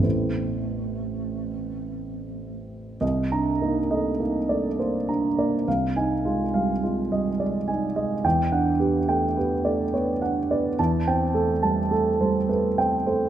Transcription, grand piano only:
X:1
M:3/4
L:1/8
Q:1/4=70
K:Am
V:1 name="Grand piano"
[A,,,A,B,CE]6 | [K:Fmix] (3[C,,e] [Db] [B,E] (3[A,e] [B,E] [A,d] (3[B,c] [Db] [B,d] | (3[C,,f] [E_a] [_A,F] (3[G,f] [A,F] [G,e] (3[A,d] [Ea] [A,e] | (3[=E,,g] [D^f] [=B,G] (3[A,g] [B,G] [A,d] (3[B,_d] [=Df] [B,=d] |
(3[=E,,a] [Cg] [A,A] (3[G,a] [A,A] [G,c] (3[A,=B] [Cg] [A,c] |]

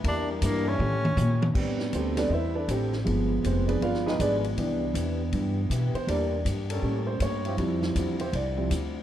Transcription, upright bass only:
X:1
M:4/4
L:1/8
Q:"Swing" 1/4=159
K:Aphr
V:1 name="Upright bass" clef=bass
E,,2 G,,2 A,,2 B,,2 | [K:Am] A,,2 D,,2 E,,2 A,,,2 | G,,,2 F,,,2 G,,,2 _A,,,2 | C,,2 E,,2 G,,2 B,, z |
E,,2 G,,2 A,,2 G,,2 | F,,2 E,,2 C,,2 D,,2 |]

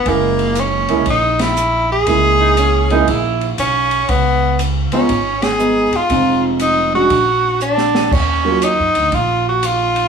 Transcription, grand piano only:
X:1
M:4/4
L:1/8
Q:"Swing" 1/4=119
K:Gb
V:1 name="Grand piano"
[A,B,D_F]3 [A,B,DF] z4 | [A,B,D_F]3 [A,B,DF] z4 | z3 [A,CEF] z2 [A,CEA] z | [A,=CEF]3 [A,D=DG] z4 |
z [G,B,DF] z6 |]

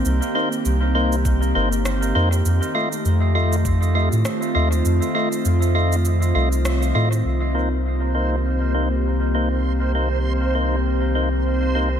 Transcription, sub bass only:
X:1
M:4/4
L:1/16
Q:"Swing 16ths" 1/4=100
K:Cdor
V:1 name="Sub bass" clef=bass
C,, z3 C,,6 G,,,4 F,,2 | F,, z3 F,,6- F,, A,, z2 E,,2 | F,, z3 F,,6 C,,4 A,,2 | C,,16- |
C,,16 |]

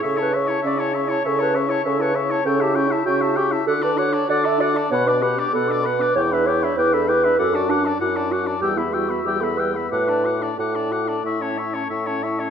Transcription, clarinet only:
X:1
M:4/4
L:1/16
Q:1/4=97
K:A
V:1 name="Clarinet"
A B c2 d2 c2 A B c2 A B c2 | [K:D] A G E2 F2 G2 A B c2 d e d2 | c B G2 A2 B2 c B c2 B A B2 | A F D2 E2 F2 G E F2 G A B2 |
B3 z A8 z4 |]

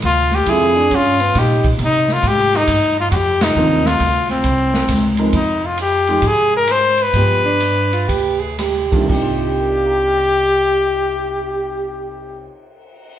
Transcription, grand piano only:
X:1
M:4/4
L:1/8
Q:"Swing" 1/4=134
K:Cm
V:1 name="Grand piano"
z8 | z8 | z8 | z8 |
z8 | z2 [Bdfbd'f'b']6- | [Bdfbd'f'b']8 |]
V:2 name="Grand piano"
z2 [D,F,A,CF] z4 z | z8 | [E,B,CDF] z6 [F,A,CEB] | z3 [F,A,EG] z4 |
[F,A,=B,G] z6 [C,,E,_B,DF] | [C,B,DEF]8- | [C,B,DEF]8 |]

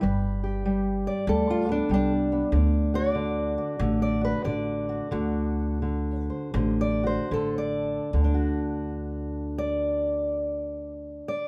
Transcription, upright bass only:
X:1
M:4/4
L:1/8
Q:"Swing" 1/4=88
K:Dmix
V:1 name="Upright bass" clef=bass
G,,,4 D,,2 C,,2 | D,,4 A,,,2 A,,,2 | D,,4 A,,,2 A,,,2 | D,,8 |]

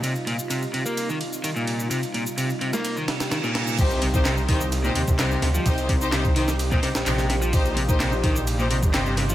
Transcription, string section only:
X:1
M:4/4
L:1/16
Q:1/4=128
K:Cm
V:1 name="String section"
z16 | z16 | [EGc]2 z [EGc]2 z [EGc] z2 [EGc] z2 [EGc] z3 | [EGc]2 z [EGc]2 z [EGc] z2 [EGc] z2 [EGc] z3 |
[EGc]2 z [EGc]2 z [EGc] z2 [EGc] z2 [EGc] z3 |]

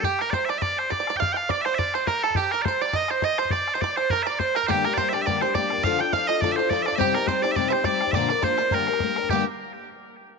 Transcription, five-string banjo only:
X:1
M:4/4
L:1/16
Q:"Swing" 1/4=208
K:Gm
V:1 name="Five-string banjo"
G2 B2 c2 d2 d4 (3d2 d2 d2 | f2 f2 d2 c2 d2 c2 B2 A2 | G2 B2 c2 d2 e2 c2 e2 c2 | d3 c d2 c2 B2 d2 c2 B2 |
G2 B2 c2 d2 d2 c2 d4 | f2 g2 f2 e2 d2 c2 d2 d2 | G2 B2 c2 d2 d2 c2 d4 | d2 d2 c2 c2 B6 z2 |
G2 z12 z2 |]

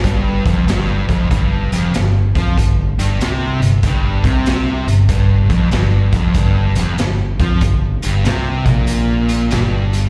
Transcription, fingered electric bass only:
X:1
M:4/4
L:1/8
Q:"Swing" 1/4=95
K:Flyd
V:1 name="Fingered electric bass" clef=bass
G,,, F,,, G,,, F,,, G,,, F,,, G,,, F,, | G,,, G,,, C,, G,,, G,,, C,,2 G,,, | G,,, z G,,, F,,, G,,, F,,, G,,, F,, | G,,, G,,, C,, _B,,,3 G,,,2 |]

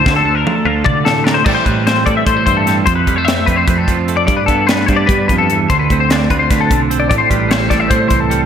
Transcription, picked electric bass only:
X:1
M:7/8
L:1/16
Q:1/4=149
K:Dm
V:1 name="Picked electric bass" clef=bass
D,,2 D,,2 z2 D,,2 D,6 | [K:Am] A,, z A,,4 A,,2 A,,2 G,,4 | F,,2 F,,4 F,,2 F,,2 F,,4 | G,, z G,,4 G,,2 G,2 G,,4 |
D,,2 D,,4 D,,2 D,,2 B,,,4 | A,,, z A,,,4 A,,,2 A,,2 C,,4 |]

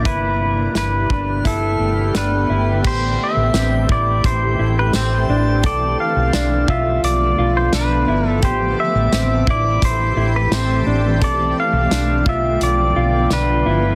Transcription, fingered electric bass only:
X:1
M:4/4
L:1/16
Q:1/4=86
K:Am
V:1 name="Fingered electric bass" clef=bass
G,,,4 G,,,2 G,,,2 G,,,2 G,,,2 G,,,2 G,,,2 | A,,,2 z A,,, A,,,2 A,,,2 A,,,2 A,,,2 A,,,2 A,,,2 | B,,,2 z B,,, z2 B,,,2 B,,,2 B,,,2 B,,,2 G,,,2 | A,,,2 z A,,, A,,,2 A,,,2 A,,,2 A,,,2 A,,,2 A,,,2 |
B,,,2 z B,,, z2 B,,,2 B,,,2 B,,,2 B,,,2 G,,,2 |]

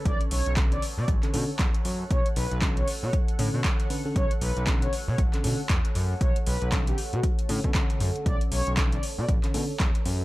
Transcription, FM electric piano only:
X:1
M:4/4
L:1/16
Q:"Swing 16ths" 1/4=117
K:Bm
V:1 name="FM electric piano"
[D,CA]4 [D,CA]2 z3 [D,CA] [D,CA] z4 z | z4 [D,CA]2 z4 [D,CA]4 [D,CB] [D,CA]- | [D,CA] z3 [D,CA]2 z3 [D,CA] [D,CA] z4 z | z4 [D,CA]2 z4 [D,CA] [D,CA]4- [D,CA]- |
[D,CA]4 [D,CA]2 z3 [D,CA] [D,CA] z4 z |]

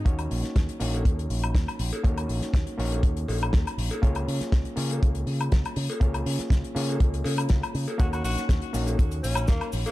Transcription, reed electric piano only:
X:1
M:4/4
L:1/8
Q:1/4=121
K:Ebm
V:1 name="Reed electric piano"
[B,DEGd]3 [B,DEGd]4- [B,DEGd] | [B,DEGd]3 [B,DEGd]4- [B,DEGd] | [B,DFAd]3 [B,DFAd]4- [B,DFAd] | [B,DFAd]3 [B,DFAd]4- [B,DFAd] |
[B,DEGd]3 [B,DEGd]4- [B,DEGd] |]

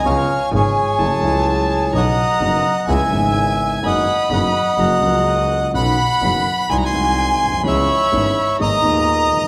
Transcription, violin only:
X:1
M:4/4
L:1/8
Q:1/4=126
K:B
V:1 name="Violin"
g4 =a4 | a4 g4 | b4 a3 z | b4 g4 |
b4 a4 |]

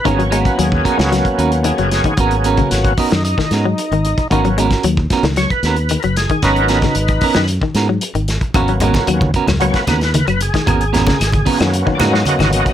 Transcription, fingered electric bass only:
X:1
M:4/4
L:1/16
Q:1/4=113
K:G#m
V:1 name="Fingered electric bass" clef=bass
G,,,4 D,,2 z C,,2 z D,,3 F,,,2 z | G,,,4 G,,,2 z F,,2 z G,,2 z G,,,2 z | G,,,4 D,,2 z C,,2 z D,,3 F,,,2 z | G,,,4 G,,,2 z F,,2 z G,,2 z G,,,2 z |
G,,,4 D,,2 z C,,2 z D,,3 F,,,2 z | G,,,4 G,,,2 z F,,2 z G,,2 z G,,,2 z |]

